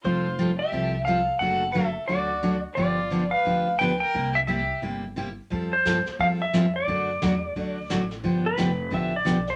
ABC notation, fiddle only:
X:1
M:4/4
L:1/8
Q:"Swing" 1/4=176
K:F
V:1 name="Fiddle"
F3 G3 A2 | A2 A2 ^F3 z | F3 =B3 B _B- | B G G2 z4 |
z8 | z8 | z8 |]